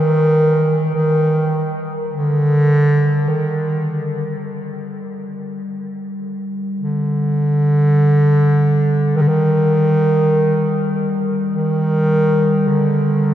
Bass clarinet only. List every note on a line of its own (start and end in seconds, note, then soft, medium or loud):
0.00 0.93 D#3 loud
0.94 1.80 D#3 medium
2.11 3.30 D3 loud
3.29 4.46 D#3 medium
6.81 9.18 D3 loud
9.16 9.23 D#3 loud
9.22 9.30 D3 medium
9.28 11.24 D#3 loud
11.52 12.69 D#3 loud
12.68 13.34 D3 medium